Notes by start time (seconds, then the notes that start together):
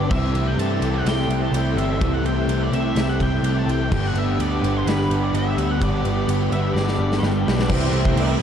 Already playing: G2 D3 G3 B3 D4 G4 D5
0.09 C2 C3 E3 G3 C4 E4 G4 A4 E5 C6, kick, crash
0.34 C2 A3, ride
0.47 G5
0.57 G2 E3 G3 C4 E4 A5, ride
0.61 G4
0.81 C2 C3 G3 A3 E4 G4, ride
0.85 C4
0.95 F#5
1.05 C2 C3 G3 C4 E4 G4 G5, snare, ride
1.20 snare
1.28 C2 E4, ride
1.42 A5
1.52 C2 G3 A3 C4 E4 G4, ride
1.56 G5
1.76 G1 E3 E5, ride
2.00 C2 C3 E3 G3 C4 E4 G4, kick, ride
2.14 F#5
2.23 C2 A3 G5, ride
2.48 C2 E3 G3 C4 E4 G4, ride
2.63 D5
2.71 C2 C3 G3 A3 C4 E4 G4 E5, ride
2.95 C2 C3 G3 C4 E4 G4, snare, ride
3.09 F#5
3.20 C2 E4 G5, kick, ride
3.42 C2 G3 A3 C4 E4 G4, ride
3.59 A5
3.67 C2 E3, ride
3.71 G5
3.90 G1 G2 D3 G3 B3 D4 G4 F#5 B5, kick, crash
4.07 F#5
4.14 G1 B3 E5, ride
4.38 D2 G3 B3 D4 G4 D5, ride
4.61 G1 G2 D3 G3 B3 D4 G4, ride
4.77 C5
4.85 G1 G2 D3 G3 B3 D4 G4 B4, snare, ride
5.01 snare
5.10 G1 D4, ride
5.23 D5
5.33 G1 G3 B3 D4 E5, ride
5.37 G4
5.57 D2, ride
5.71 F#5
5.80 G1 G2 D3 G3 B3 D4 G4 D5, kick, ride
6.05 G1 B3, ride
6.27 G1 G3 B3 D4 G4, ride
6.50 G1 G2 D3 G3 B3 D4 G4 E5, ride
6.74 G1 G2 D3 G3 B3 D4 G4 D5, snare
6.88 snare
6.99 G1 D4
7.12 snare
7.19 G1 G3 B3 B4
7.23 B3 D4 G4, snare
7.47 B1 F#3, snare
7.59 snare
7.69 C2 C3 E3 G3 C4 E4 G4 A4 E5 C6, kick, crash
7.73 C4
7.92 C2 A3, crash
8.05 kick
8.16 C2 E3 G3 C4 E4 G4, crash
8.22 E4